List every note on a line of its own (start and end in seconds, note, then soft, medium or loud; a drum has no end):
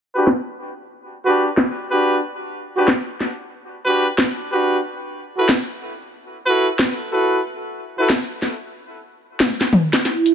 0.15 0.28 D4 medium
0.15 0.28 F#4 medium
0.15 0.28 G4 medium
0.15 0.28 B4 medium
0.27 snare loud
1.25 1.46 D4 medium
1.25 1.46 F#4 medium
1.25 1.46 G4 medium
1.25 1.46 B4 loud
1.57 snare loud
1.90 2.18 D4 medium
1.90 2.19 F#4 medium
1.90 2.19 G4 medium
1.90 2.18 B4 medium
2.76 2.88 D4 medium
2.76 2.88 F#4 medium
2.76 2.88 G4 medium
2.76 2.88 B4 medium
2.88 snare loud
3.20 snare soft
3.86 4.07 D4 medium
3.86 4.07 F#4 medium
3.86 4.07 G4 medium
3.86 4.07 B4 loud
4.18 snare loud
4.51 4.79 D4 medium
4.51 4.79 F#4 medium
4.51 4.79 G4 medium
4.51 4.79 B4 medium
5.37 5.49 E4 medium
5.37 5.49 F#4 medium
5.37 5.49 A4 medium
5.37 5.49 B4 medium
5.49 snare loud
6.47 6.68 E4 medium
6.47 6.68 F#4 medium
6.47 6.68 A4 medium
6.47 6.68 B4 loud
6.79 snare loud
7.12 7.40 E4 medium
7.12 7.40 F#4 medium
7.12 7.40 A4 medium
7.12 7.40 B4 medium
7.98 8.10 E4 medium
7.98 8.10 F#4 medium
7.98 8.10 A4 medium
7.98 8.10 B4 medium
8.10 snare loud
8.42 snare soft
9.40 snare loud
9.40 high tom medium
9.61 snare medium
9.73 mid tom medium
9.93 snare medium
10.05 10.35 E4 medium
10.05 snare soft
10.05 closed hi-hat medium
10.26 closed hi-hat medium